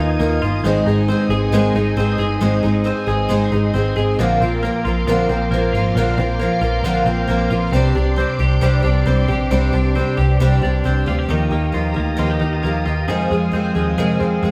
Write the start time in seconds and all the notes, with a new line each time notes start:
Already playing: D#2 D#3 A#3 F4 D#5 G#5 D#6
0.00 A#3 D#4
0.20 D#2 D#3 A#3 D#4 F4
0.42 G1 A#3 D#4 F4
0.63 G#1 G#2 D#3 G#3 C4 D#4 G#4 D#5 C6
0.67 G#4
0.85 G#1 C4 D#4 G#4
0.90 G#3
1.08 G#3 C4 D#4 G#4
1.29 G#1 G#3 C4 D#4 G#4
1.51 G#1 G#2 D#3 G#3 C4 D#4 G#4
1.74 G#1 C4 D#4 G#4
1.78 G#3
1.97 G#1 G#3 C4 D#4 G#4
2.18 G1 G#3 C4 D#4 G#4
2.40 G#1 G#2 D#3 G#3 C4 D#4 G#4
2.63 G#1 G#3 C4 D#4 G#4
2.84 G#3 C4 D#4 G#4
3.07 G#1 G#3 C4 D#4 G#4
3.29 G#1 G#2 D#3 G#3 C4 D#4 G#4
3.52 G#1 G#3 C4 D#4 G#4
3.74 G#1 G#3 C4 D#4 G#4
3.96 G#1 G#3 C4 D#4 G#4
4.17 A#1 A#2 D3 F3 A#3 C4 F4 A#4 F5 D6
4.41 A#1 A#3 C4 F4
4.45 F3
4.63 F3 A#3 C4 F4
4.85 A#1 F3 A#3 C4 F4
5.07 A#1 A#2 D3 F3 A#3 C4 F4
5.29 A#1 F3 A#3 C4 F4
5.51 A#1 F3 A#3 C4
5.55 F4
5.73 G#1 A#3 C4 F4
5.78 F3
5.95 A#1 A#2 D3 F3 A#3 C4 F4
6.17 A#1 F3 A#3 C4 F4
6.39 F3 A#3 C4 F4
6.61 A#1 F3 A#3 C4 F4
6.83 A#1 A#2 D3 F3 A#3 C4
6.87 F4
7.05 A#1 F3 A#3 C4 F4
7.27 A#1 F3 A#3 C4 F4
7.50 A#1 F3 A#3 C4 F4
7.72 C2 C3 G3 C4 D4 G4 D5
7.95 C2 C4 D4 G4
8.16 G3 C4 D4 G4
8.39 C2 C4 D4 G4
8.61 C2 C3 G3 C4 D4 G4
8.82 C2 C4 D4 G4
9.05 C2 G3 C4 D4 G4
9.28 A#1 C4 D4 G4
9.51 C2 C3 G3 C4 D4 G4
9.73 C2 C4 D4 G4
9.95 G3 C4 D4 G4
10.17 C2 C4 D4 G4
10.40 C2 C3 G3 C4 D4 G4
10.62 C2 C4 D4 G4
10.84 C2 G3 C4 D4 G4
11.06 D2 D4 F4 G4
11.10 C4
11.19 G4
11.28 D#2 D#3 F3 A#3 D#4 G4 F5 A#5 D#6
11.51 D#2 A#3 D#4 G4
11.72 D#2 F3 A#3 D#4 F4 G4
11.94 D2 A#3 D#4 G4
12.17 D#2 D#3 F3 A#3 D#4 F4 G4
12.30 G4
12.39 D#2 A#3 D#4 G4
12.53 F4
12.63 D#2 F3 A#3 D#4 G4
12.86 D#2 A#3 D#4 F4 G4
13.08 F2 C3 D#3 G#3 C4 G#4 C6
13.31 F2 D#3 G#3 C4 G#4
13.52 F2 D#3 G#3 C4 G#4
13.75 D#2 D#3 G#3 C4 G#4
13.98 F2 C3 D#3 G#3 C4 G#4
14.20 F2 D#3 G#3 C4 G#4
14.43 F2 D#3 G#3 C4 G#4